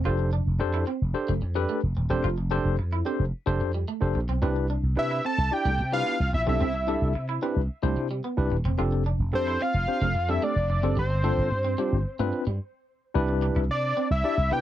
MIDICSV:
0, 0, Header, 1, 6, 480
1, 0, Start_track
1, 0, Key_signature, 0, "major"
1, 0, Tempo, 545455
1, 51, Time_signature, 4, 2, 24, 8
1, 12857, End_track
2, 0, Start_track
2, 0, Title_t, "Analog synth lead"
2, 0, Program_c, 0, 81
2, 4388, Note_on_c, 0, 76, 97
2, 4603, Note_off_c, 0, 76, 0
2, 4627, Note_on_c, 0, 81, 106
2, 4867, Note_on_c, 0, 79, 107
2, 4880, Note_off_c, 0, 81, 0
2, 5215, Note_off_c, 0, 79, 0
2, 5221, Note_on_c, 0, 77, 97
2, 5551, Note_off_c, 0, 77, 0
2, 5581, Note_on_c, 0, 76, 91
2, 5688, Note_off_c, 0, 76, 0
2, 5709, Note_on_c, 0, 76, 83
2, 6385, Note_off_c, 0, 76, 0
2, 8229, Note_on_c, 0, 72, 103
2, 8465, Note_on_c, 0, 77, 119
2, 8478, Note_off_c, 0, 72, 0
2, 9066, Note_on_c, 0, 76, 102
2, 9079, Note_off_c, 0, 77, 0
2, 9182, Note_on_c, 0, 74, 98
2, 9195, Note_off_c, 0, 76, 0
2, 9656, Note_off_c, 0, 74, 0
2, 9670, Note_on_c, 0, 72, 95
2, 11065, Note_off_c, 0, 72, 0
2, 12063, Note_on_c, 0, 74, 95
2, 12392, Note_off_c, 0, 74, 0
2, 12421, Note_on_c, 0, 76, 99
2, 12782, Note_on_c, 0, 79, 110
2, 12795, Note_off_c, 0, 76, 0
2, 12857, Note_off_c, 0, 79, 0
2, 12857, End_track
3, 0, Start_track
3, 0, Title_t, "Tine electric piano"
3, 0, Program_c, 1, 4
3, 44, Note_on_c, 1, 62, 81
3, 48, Note_on_c, 1, 67, 81
3, 48, Note_on_c, 1, 69, 81
3, 52, Note_on_c, 1, 72, 98
3, 259, Note_off_c, 1, 62, 0
3, 261, Note_off_c, 1, 67, 0
3, 261, Note_off_c, 1, 69, 0
3, 263, Note_off_c, 1, 72, 0
3, 523, Note_on_c, 1, 62, 102
3, 527, Note_on_c, 1, 67, 85
3, 529, Note_on_c, 1, 69, 88
3, 531, Note_on_c, 1, 72, 107
3, 738, Note_off_c, 1, 62, 0
3, 740, Note_off_c, 1, 67, 0
3, 741, Note_off_c, 1, 69, 0
3, 742, Note_off_c, 1, 72, 0
3, 1003, Note_on_c, 1, 62, 89
3, 1006, Note_on_c, 1, 67, 80
3, 1008, Note_on_c, 1, 69, 78
3, 1008, Note_on_c, 1, 72, 98
3, 1165, Note_off_c, 1, 62, 0
3, 1167, Note_off_c, 1, 67, 0
3, 1168, Note_off_c, 1, 69, 0
3, 1168, Note_off_c, 1, 72, 0
3, 1366, Note_on_c, 1, 62, 102
3, 1368, Note_on_c, 1, 67, 98
3, 1369, Note_on_c, 1, 69, 94
3, 1373, Note_on_c, 1, 71, 109
3, 1580, Note_off_c, 1, 62, 0
3, 1581, Note_off_c, 1, 67, 0
3, 1581, Note_off_c, 1, 69, 0
3, 1583, Note_off_c, 1, 71, 0
3, 1846, Note_on_c, 1, 62, 101
3, 1847, Note_on_c, 1, 67, 90
3, 1851, Note_on_c, 1, 69, 85
3, 1852, Note_on_c, 1, 72, 109
3, 2007, Note_off_c, 1, 62, 0
3, 2008, Note_off_c, 1, 67, 0
3, 2010, Note_off_c, 1, 69, 0
3, 2010, Note_off_c, 1, 72, 0
3, 2205, Note_on_c, 1, 62, 103
3, 2209, Note_on_c, 1, 67, 98
3, 2210, Note_on_c, 1, 69, 94
3, 2212, Note_on_c, 1, 72, 118
3, 2419, Note_off_c, 1, 62, 0
3, 2421, Note_off_c, 1, 67, 0
3, 2422, Note_off_c, 1, 69, 0
3, 2423, Note_off_c, 1, 72, 0
3, 2686, Note_on_c, 1, 62, 80
3, 2690, Note_on_c, 1, 67, 80
3, 2690, Note_on_c, 1, 69, 71
3, 2694, Note_on_c, 1, 72, 98
3, 2847, Note_off_c, 1, 62, 0
3, 2849, Note_off_c, 1, 67, 0
3, 2849, Note_off_c, 1, 69, 0
3, 2851, Note_off_c, 1, 72, 0
3, 3046, Note_on_c, 1, 62, 93
3, 3047, Note_on_c, 1, 67, 84
3, 3049, Note_on_c, 1, 69, 81
3, 3052, Note_on_c, 1, 72, 106
3, 3260, Note_off_c, 1, 62, 0
3, 3260, Note_off_c, 1, 67, 0
3, 3261, Note_off_c, 1, 69, 0
3, 3263, Note_off_c, 1, 72, 0
3, 3526, Note_on_c, 1, 62, 89
3, 3529, Note_on_c, 1, 67, 79
3, 3530, Note_on_c, 1, 69, 75
3, 3533, Note_on_c, 1, 72, 94
3, 3687, Note_off_c, 1, 62, 0
3, 3689, Note_off_c, 1, 67, 0
3, 3689, Note_off_c, 1, 69, 0
3, 3690, Note_off_c, 1, 72, 0
3, 3889, Note_on_c, 1, 62, 93
3, 3890, Note_on_c, 1, 64, 78
3, 3894, Note_on_c, 1, 67, 80
3, 3896, Note_on_c, 1, 71, 96
3, 4102, Note_off_c, 1, 62, 0
3, 4102, Note_off_c, 1, 64, 0
3, 4104, Note_off_c, 1, 67, 0
3, 4105, Note_off_c, 1, 71, 0
3, 4368, Note_on_c, 1, 62, 78
3, 4370, Note_on_c, 1, 64, 72
3, 4373, Note_on_c, 1, 67, 74
3, 4374, Note_on_c, 1, 71, 87
3, 4581, Note_off_c, 1, 62, 0
3, 4582, Note_off_c, 1, 64, 0
3, 4583, Note_off_c, 1, 67, 0
3, 4584, Note_off_c, 1, 71, 0
3, 4851, Note_on_c, 1, 62, 75
3, 4853, Note_on_c, 1, 64, 68
3, 4855, Note_on_c, 1, 67, 69
3, 4858, Note_on_c, 1, 74, 84
3, 5009, Note_off_c, 1, 62, 0
3, 5010, Note_off_c, 1, 64, 0
3, 5011, Note_off_c, 1, 67, 0
3, 5013, Note_off_c, 1, 74, 0
3, 5212, Note_on_c, 1, 62, 86
3, 5215, Note_on_c, 1, 64, 78
3, 5216, Note_on_c, 1, 67, 79
3, 5219, Note_on_c, 1, 71, 91
3, 5423, Note_off_c, 1, 62, 0
3, 5424, Note_off_c, 1, 64, 0
3, 5425, Note_off_c, 1, 67, 0
3, 5426, Note_off_c, 1, 71, 0
3, 5688, Note_on_c, 1, 62, 77
3, 5692, Note_on_c, 1, 64, 74
3, 5692, Note_on_c, 1, 67, 71
3, 5696, Note_on_c, 1, 69, 91
3, 5848, Note_off_c, 1, 62, 0
3, 5850, Note_off_c, 1, 64, 0
3, 5850, Note_off_c, 1, 67, 0
3, 5852, Note_off_c, 1, 69, 0
3, 6049, Note_on_c, 1, 62, 85
3, 6052, Note_on_c, 1, 64, 81
3, 6056, Note_on_c, 1, 67, 75
3, 6057, Note_on_c, 1, 69, 98
3, 6261, Note_off_c, 1, 62, 0
3, 6263, Note_off_c, 1, 64, 0
3, 6265, Note_off_c, 1, 67, 0
3, 6265, Note_off_c, 1, 69, 0
3, 6531, Note_on_c, 1, 62, 80
3, 6533, Note_on_c, 1, 64, 79
3, 6535, Note_on_c, 1, 67, 77
3, 6536, Note_on_c, 1, 71, 92
3, 6689, Note_off_c, 1, 62, 0
3, 6691, Note_off_c, 1, 64, 0
3, 6692, Note_off_c, 1, 67, 0
3, 6692, Note_off_c, 1, 71, 0
3, 6885, Note_on_c, 1, 62, 86
3, 6888, Note_on_c, 1, 64, 84
3, 6889, Note_on_c, 1, 67, 80
3, 6891, Note_on_c, 1, 72, 94
3, 7099, Note_off_c, 1, 62, 0
3, 7101, Note_off_c, 1, 64, 0
3, 7101, Note_off_c, 1, 67, 0
3, 7102, Note_off_c, 1, 72, 0
3, 7365, Note_on_c, 1, 62, 88
3, 7368, Note_on_c, 1, 64, 80
3, 7372, Note_on_c, 1, 67, 79
3, 7373, Note_on_c, 1, 71, 93
3, 7527, Note_off_c, 1, 62, 0
3, 7528, Note_off_c, 1, 64, 0
3, 7530, Note_off_c, 1, 67, 0
3, 7531, Note_off_c, 1, 71, 0
3, 7726, Note_on_c, 1, 60, 89
3, 7730, Note_on_c, 1, 62, 82
3, 7732, Note_on_c, 1, 67, 81
3, 7734, Note_on_c, 1, 69, 91
3, 7940, Note_off_c, 1, 60, 0
3, 7942, Note_off_c, 1, 62, 0
3, 7943, Note_off_c, 1, 67, 0
3, 7944, Note_off_c, 1, 69, 0
3, 8207, Note_on_c, 1, 60, 80
3, 8211, Note_on_c, 1, 62, 76
3, 8212, Note_on_c, 1, 67, 76
3, 8215, Note_on_c, 1, 69, 91
3, 8420, Note_off_c, 1, 60, 0
3, 8422, Note_off_c, 1, 62, 0
3, 8423, Note_off_c, 1, 67, 0
3, 8424, Note_off_c, 1, 69, 0
3, 8692, Note_on_c, 1, 60, 71
3, 8693, Note_on_c, 1, 62, 72
3, 8694, Note_on_c, 1, 67, 67
3, 8698, Note_on_c, 1, 72, 80
3, 8850, Note_off_c, 1, 60, 0
3, 8850, Note_off_c, 1, 62, 0
3, 8851, Note_off_c, 1, 67, 0
3, 8853, Note_off_c, 1, 72, 0
3, 9052, Note_on_c, 1, 60, 82
3, 9054, Note_on_c, 1, 62, 84
3, 9058, Note_on_c, 1, 67, 77
3, 9058, Note_on_c, 1, 69, 97
3, 9263, Note_off_c, 1, 60, 0
3, 9264, Note_off_c, 1, 62, 0
3, 9266, Note_off_c, 1, 67, 0
3, 9266, Note_off_c, 1, 69, 0
3, 9531, Note_on_c, 1, 60, 79
3, 9533, Note_on_c, 1, 62, 78
3, 9535, Note_on_c, 1, 67, 74
3, 9538, Note_on_c, 1, 69, 93
3, 9651, Note_off_c, 1, 60, 0
3, 9652, Note_off_c, 1, 62, 0
3, 9653, Note_off_c, 1, 67, 0
3, 9655, Note_off_c, 1, 69, 0
3, 9886, Note_on_c, 1, 60, 88
3, 9887, Note_on_c, 1, 62, 75
3, 9889, Note_on_c, 1, 65, 76
3, 9894, Note_on_c, 1, 69, 95
3, 10100, Note_off_c, 1, 60, 0
3, 10100, Note_off_c, 1, 62, 0
3, 10101, Note_off_c, 1, 65, 0
3, 10104, Note_off_c, 1, 69, 0
3, 10369, Note_on_c, 1, 60, 86
3, 10373, Note_on_c, 1, 62, 79
3, 10376, Note_on_c, 1, 65, 75
3, 10377, Note_on_c, 1, 67, 92
3, 10529, Note_off_c, 1, 60, 0
3, 10530, Note_off_c, 1, 62, 0
3, 10532, Note_off_c, 1, 65, 0
3, 10532, Note_off_c, 1, 67, 0
3, 10729, Note_on_c, 1, 60, 93
3, 10732, Note_on_c, 1, 62, 84
3, 10733, Note_on_c, 1, 65, 81
3, 10738, Note_on_c, 1, 71, 101
3, 10941, Note_off_c, 1, 60, 0
3, 10943, Note_off_c, 1, 62, 0
3, 10943, Note_off_c, 1, 65, 0
3, 10946, Note_off_c, 1, 71, 0
3, 11567, Note_on_c, 1, 62, 100
3, 11569, Note_on_c, 1, 64, 96
3, 11572, Note_on_c, 1, 67, 92
3, 11574, Note_on_c, 1, 71, 107
3, 11992, Note_off_c, 1, 62, 0
3, 11993, Note_off_c, 1, 64, 0
3, 11994, Note_off_c, 1, 67, 0
3, 11995, Note_off_c, 1, 71, 0
3, 12530, Note_on_c, 1, 62, 82
3, 12531, Note_on_c, 1, 64, 73
3, 12536, Note_on_c, 1, 67, 76
3, 12539, Note_on_c, 1, 74, 87
3, 12636, Note_off_c, 1, 62, 0
3, 12637, Note_off_c, 1, 64, 0
3, 12639, Note_off_c, 1, 67, 0
3, 12641, Note_off_c, 1, 74, 0
3, 12769, Note_on_c, 1, 62, 71
3, 12772, Note_on_c, 1, 64, 61
3, 12774, Note_on_c, 1, 67, 70
3, 12774, Note_on_c, 1, 71, 78
3, 12857, Note_off_c, 1, 62, 0
3, 12857, Note_off_c, 1, 64, 0
3, 12857, Note_off_c, 1, 67, 0
3, 12857, Note_off_c, 1, 71, 0
3, 12857, End_track
4, 0, Start_track
4, 0, Title_t, "Clean electric guitar"
4, 0, Program_c, 2, 27
4, 46, Note_on_c, 2, 65, 82
4, 150, Note_off_c, 2, 65, 0
4, 288, Note_on_c, 2, 62, 68
4, 391, Note_off_c, 2, 62, 0
4, 649, Note_on_c, 2, 64, 77
4, 751, Note_off_c, 2, 64, 0
4, 766, Note_on_c, 2, 60, 85
4, 870, Note_off_c, 2, 60, 0
4, 1130, Note_on_c, 2, 57, 75
4, 1232, Note_off_c, 2, 57, 0
4, 1371, Note_on_c, 2, 55, 69
4, 1472, Note_off_c, 2, 55, 0
4, 1488, Note_on_c, 2, 57, 80
4, 1591, Note_off_c, 2, 57, 0
4, 1851, Note_on_c, 2, 60, 73
4, 1952, Note_off_c, 2, 60, 0
4, 1971, Note_on_c, 2, 65, 88
4, 2073, Note_off_c, 2, 65, 0
4, 2212, Note_on_c, 2, 62, 73
4, 2313, Note_off_c, 2, 62, 0
4, 2574, Note_on_c, 2, 64, 73
4, 2674, Note_off_c, 2, 64, 0
4, 2695, Note_on_c, 2, 60, 82
4, 2795, Note_off_c, 2, 60, 0
4, 3055, Note_on_c, 2, 57, 72
4, 3155, Note_off_c, 2, 57, 0
4, 3295, Note_on_c, 2, 55, 62
4, 3395, Note_off_c, 2, 55, 0
4, 3415, Note_on_c, 2, 57, 76
4, 3515, Note_off_c, 2, 57, 0
4, 3775, Note_on_c, 2, 60, 72
4, 3875, Note_off_c, 2, 60, 0
4, 3894, Note_on_c, 2, 60, 85
4, 3994, Note_off_c, 2, 60, 0
4, 4135, Note_on_c, 2, 62, 67
4, 4235, Note_off_c, 2, 62, 0
4, 4498, Note_on_c, 2, 64, 67
4, 4596, Note_off_c, 2, 64, 0
4, 4617, Note_on_c, 2, 60, 86
4, 4716, Note_off_c, 2, 60, 0
4, 4976, Note_on_c, 2, 57, 78
4, 5075, Note_off_c, 2, 57, 0
4, 5213, Note_on_c, 2, 55, 63
4, 5314, Note_off_c, 2, 55, 0
4, 5334, Note_on_c, 2, 59, 74
4, 5434, Note_off_c, 2, 59, 0
4, 5692, Note_on_c, 2, 60, 76
4, 5793, Note_off_c, 2, 60, 0
4, 5813, Note_on_c, 2, 60, 85
4, 5914, Note_off_c, 2, 60, 0
4, 6055, Note_on_c, 2, 62, 77
4, 6154, Note_off_c, 2, 62, 0
4, 6414, Note_on_c, 2, 64, 70
4, 6514, Note_off_c, 2, 64, 0
4, 6535, Note_on_c, 2, 60, 85
4, 6635, Note_off_c, 2, 60, 0
4, 6893, Note_on_c, 2, 57, 73
4, 6994, Note_off_c, 2, 57, 0
4, 7134, Note_on_c, 2, 55, 68
4, 7234, Note_off_c, 2, 55, 0
4, 7253, Note_on_c, 2, 59, 68
4, 7354, Note_off_c, 2, 59, 0
4, 7614, Note_on_c, 2, 60, 74
4, 7714, Note_off_c, 2, 60, 0
4, 7732, Note_on_c, 2, 65, 86
4, 7833, Note_off_c, 2, 65, 0
4, 7974, Note_on_c, 2, 62, 75
4, 8074, Note_off_c, 2, 62, 0
4, 8335, Note_on_c, 2, 64, 74
4, 8434, Note_off_c, 2, 64, 0
4, 8454, Note_on_c, 2, 60, 89
4, 8554, Note_off_c, 2, 60, 0
4, 8814, Note_on_c, 2, 57, 78
4, 8914, Note_off_c, 2, 57, 0
4, 9052, Note_on_c, 2, 55, 68
4, 9153, Note_off_c, 2, 55, 0
4, 9173, Note_on_c, 2, 57, 77
4, 9273, Note_off_c, 2, 57, 0
4, 9533, Note_on_c, 2, 60, 76
4, 9633, Note_off_c, 2, 60, 0
4, 9653, Note_on_c, 2, 55, 81
4, 9753, Note_off_c, 2, 55, 0
4, 9890, Note_on_c, 2, 57, 72
4, 9992, Note_off_c, 2, 57, 0
4, 10248, Note_on_c, 2, 60, 76
4, 10350, Note_off_c, 2, 60, 0
4, 10368, Note_on_c, 2, 55, 86
4, 10471, Note_off_c, 2, 55, 0
4, 10731, Note_on_c, 2, 57, 77
4, 10832, Note_off_c, 2, 57, 0
4, 10972, Note_on_c, 2, 55, 65
4, 11073, Note_off_c, 2, 55, 0
4, 11813, Note_on_c, 2, 62, 79
4, 11913, Note_off_c, 2, 62, 0
4, 11934, Note_on_c, 2, 64, 66
4, 12034, Note_off_c, 2, 64, 0
4, 12292, Note_on_c, 2, 60, 77
4, 12393, Note_off_c, 2, 60, 0
4, 12771, Note_on_c, 2, 59, 73
4, 12857, Note_off_c, 2, 59, 0
4, 12857, End_track
5, 0, Start_track
5, 0, Title_t, "Slap bass"
5, 0, Program_c, 3, 36
5, 54, Note_on_c, 3, 29, 102
5, 353, Note_off_c, 3, 29, 0
5, 413, Note_on_c, 3, 29, 94
5, 513, Note_off_c, 3, 29, 0
5, 532, Note_on_c, 3, 41, 91
5, 732, Note_off_c, 3, 41, 0
5, 895, Note_on_c, 3, 29, 88
5, 993, Note_off_c, 3, 29, 0
5, 1134, Note_on_c, 3, 29, 85
5, 1233, Note_off_c, 3, 29, 0
5, 1253, Note_on_c, 3, 41, 94
5, 1452, Note_off_c, 3, 41, 0
5, 1613, Note_on_c, 3, 29, 89
5, 1712, Note_off_c, 3, 29, 0
5, 1734, Note_on_c, 3, 27, 93
5, 1833, Note_off_c, 3, 27, 0
5, 1853, Note_on_c, 3, 28, 85
5, 1952, Note_off_c, 3, 28, 0
5, 1973, Note_on_c, 3, 29, 92
5, 2273, Note_off_c, 3, 29, 0
5, 2333, Note_on_c, 3, 29, 86
5, 2432, Note_off_c, 3, 29, 0
5, 2453, Note_on_c, 3, 41, 94
5, 2652, Note_off_c, 3, 41, 0
5, 2812, Note_on_c, 3, 29, 90
5, 2911, Note_off_c, 3, 29, 0
5, 3052, Note_on_c, 3, 29, 88
5, 3152, Note_off_c, 3, 29, 0
5, 3172, Note_on_c, 3, 41, 100
5, 3372, Note_off_c, 3, 41, 0
5, 3533, Note_on_c, 3, 29, 83
5, 3632, Note_off_c, 3, 29, 0
5, 3653, Note_on_c, 3, 34, 93
5, 3752, Note_off_c, 3, 34, 0
5, 3773, Note_on_c, 3, 35, 88
5, 3872, Note_off_c, 3, 35, 0
5, 3894, Note_on_c, 3, 36, 103
5, 4193, Note_off_c, 3, 36, 0
5, 4253, Note_on_c, 3, 36, 88
5, 4352, Note_off_c, 3, 36, 0
5, 4373, Note_on_c, 3, 48, 95
5, 4572, Note_off_c, 3, 48, 0
5, 4735, Note_on_c, 3, 36, 83
5, 4834, Note_off_c, 3, 36, 0
5, 4973, Note_on_c, 3, 36, 91
5, 5091, Note_on_c, 3, 48, 97
5, 5105, Note_off_c, 3, 36, 0
5, 5292, Note_off_c, 3, 48, 0
5, 5456, Note_on_c, 3, 36, 82
5, 5554, Note_off_c, 3, 36, 0
5, 5576, Note_on_c, 3, 34, 95
5, 5674, Note_off_c, 3, 34, 0
5, 5696, Note_on_c, 3, 35, 84
5, 5794, Note_off_c, 3, 35, 0
5, 5817, Note_on_c, 3, 36, 98
5, 6115, Note_off_c, 3, 36, 0
5, 6175, Note_on_c, 3, 36, 84
5, 6273, Note_off_c, 3, 36, 0
5, 6295, Note_on_c, 3, 48, 89
5, 6493, Note_off_c, 3, 48, 0
5, 6656, Note_on_c, 3, 36, 79
5, 6754, Note_off_c, 3, 36, 0
5, 6892, Note_on_c, 3, 36, 95
5, 6992, Note_off_c, 3, 36, 0
5, 7015, Note_on_c, 3, 48, 95
5, 7214, Note_off_c, 3, 48, 0
5, 7372, Note_on_c, 3, 36, 101
5, 7472, Note_off_c, 3, 36, 0
5, 7494, Note_on_c, 3, 27, 95
5, 7593, Note_off_c, 3, 27, 0
5, 7614, Note_on_c, 3, 28, 88
5, 7713, Note_off_c, 3, 28, 0
5, 7735, Note_on_c, 3, 29, 101
5, 8034, Note_off_c, 3, 29, 0
5, 8090, Note_on_c, 3, 29, 82
5, 8191, Note_off_c, 3, 29, 0
5, 8213, Note_on_c, 3, 41, 109
5, 8412, Note_off_c, 3, 41, 0
5, 8573, Note_on_c, 3, 29, 90
5, 8672, Note_off_c, 3, 29, 0
5, 8811, Note_on_c, 3, 29, 102
5, 8911, Note_off_c, 3, 29, 0
5, 8932, Note_on_c, 3, 41, 91
5, 9132, Note_off_c, 3, 41, 0
5, 9293, Note_on_c, 3, 29, 89
5, 9392, Note_off_c, 3, 29, 0
5, 9414, Note_on_c, 3, 29, 81
5, 9513, Note_off_c, 3, 29, 0
5, 9533, Note_on_c, 3, 30, 84
5, 9632, Note_off_c, 3, 30, 0
5, 9652, Note_on_c, 3, 31, 93
5, 9952, Note_off_c, 3, 31, 0
5, 10013, Note_on_c, 3, 31, 87
5, 10113, Note_off_c, 3, 31, 0
5, 10133, Note_on_c, 3, 43, 105
5, 10332, Note_off_c, 3, 43, 0
5, 10494, Note_on_c, 3, 31, 81
5, 10593, Note_off_c, 3, 31, 0
5, 10733, Note_on_c, 3, 43, 98
5, 10832, Note_off_c, 3, 43, 0
5, 10973, Note_on_c, 3, 43, 95
5, 11072, Note_off_c, 3, 43, 0
5, 11573, Note_on_c, 3, 36, 102
5, 11873, Note_off_c, 3, 36, 0
5, 11933, Note_on_c, 3, 36, 93
5, 12032, Note_off_c, 3, 36, 0
5, 12050, Note_on_c, 3, 48, 101
5, 12251, Note_off_c, 3, 48, 0
5, 12413, Note_on_c, 3, 36, 92
5, 12512, Note_off_c, 3, 36, 0
5, 12651, Note_on_c, 3, 36, 93
5, 12751, Note_off_c, 3, 36, 0
5, 12772, Note_on_c, 3, 48, 104
5, 12857, Note_off_c, 3, 48, 0
5, 12857, End_track
6, 0, Start_track
6, 0, Title_t, "Muted clean electric guitar strokes"
6, 169, Note_on_c, 9, 29, 42
6, 257, Note_off_c, 9, 29, 0
6, 529, Note_on_c, 9, 29, 41
6, 617, Note_off_c, 9, 29, 0
6, 1249, Note_on_c, 9, 29, 42
6, 1337, Note_off_c, 9, 29, 0
6, 1731, Note_on_c, 9, 29, 47
6, 1819, Note_off_c, 9, 29, 0
6, 2092, Note_on_c, 9, 29, 40
6, 2180, Note_off_c, 9, 29, 0
6, 2454, Note_on_c, 9, 29, 45
6, 2542, Note_off_c, 9, 29, 0
6, 3177, Note_on_c, 9, 29, 41
6, 3265, Note_off_c, 9, 29, 0
6, 3653, Note_on_c, 9, 29, 42
6, 3741, Note_off_c, 9, 29, 0
6, 4015, Note_on_c, 9, 29, 41
6, 4103, Note_off_c, 9, 29, 0
6, 4375, Note_on_c, 9, 29, 42
6, 4463, Note_off_c, 9, 29, 0
6, 5096, Note_on_c, 9, 29, 41
6, 5184, Note_off_c, 9, 29, 0
6, 5573, Note_on_c, 9, 29, 42
6, 5661, Note_off_c, 9, 29, 0
6, 5933, Note_on_c, 9, 29, 44
6, 6021, Note_off_c, 9, 29, 0
6, 6295, Note_on_c, 9, 29, 43
6, 6383, Note_off_c, 9, 29, 0
6, 7014, Note_on_c, 9, 29, 40
6, 7102, Note_off_c, 9, 29, 0
6, 7495, Note_on_c, 9, 29, 42
6, 7583, Note_off_c, 9, 29, 0
6, 7854, Note_on_c, 9, 29, 39
6, 7942, Note_off_c, 9, 29, 0
6, 8215, Note_on_c, 9, 29, 43
6, 8303, Note_off_c, 9, 29, 0
6, 8933, Note_on_c, 9, 29, 39
6, 9021, Note_off_c, 9, 29, 0
6, 9414, Note_on_c, 9, 29, 47
6, 9502, Note_off_c, 9, 29, 0
6, 9770, Note_on_c, 9, 29, 41
6, 9858, Note_off_c, 9, 29, 0
6, 10129, Note_on_c, 9, 29, 43
6, 10217, Note_off_c, 9, 29, 0
6, 10850, Note_on_c, 9, 29, 39
6, 10938, Note_off_c, 9, 29, 0
6, 11691, Note_on_c, 9, 29, 43
6, 11779, Note_off_c, 9, 29, 0
6, 12532, Note_on_c, 9, 29, 51
6, 12620, Note_off_c, 9, 29, 0
6, 12857, End_track
0, 0, End_of_file